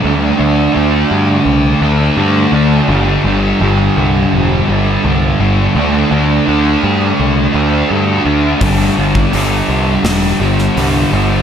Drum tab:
HH |----------------|----------------|----------------|o---o---o---o---|
SD |----------------|----------------|----------------|--------o--o----|
BD |----------------|----------------|----------------|o--o------------|